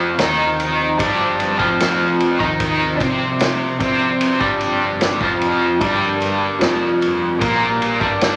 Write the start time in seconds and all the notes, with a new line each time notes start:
Already playing: F1 F2 F3 C4 C5
0.18 D#2 D#3 D#4, snare, ride, tambourine
0.60 ride, tambourine
0.98 G1 G2 G3, kick, ride, tambourine
1.40 ride, tambourine
1.58 F1 F2 F3, kick
1.80 snare, ride, tambourine
2.20 ride
2.39 D#2 D#3 D#4, kick
2.59 D5, kick, ride, tambourine
2.99 C2 C3 C4, kick, ride, tambourine
3.39 snare, ride, tambourine
3.80 C2 C3 C4, kick, ride, tambourine
4.21 ride, tambourine
4.40 G1 G2 G3, kick
4.61 ride, tambourine
5.01 snare, ride, tambourine
5.21 F1 F2 F3, kick
5.41 ride, tambourine
5.80 G1 G2 G3 A#4 D5, kick, ride, tambourine
6.20 ride, tambourine
6.61 F1 F2 F3, snare, ride, tambourine
7.01 ride, tambourine
7.40 A#1 A#2 A#3, kick, ride, tambourine
7.82 ride, tambourine
8.01 G1 G2 G3, kick
8.21 snare, ride, tambourine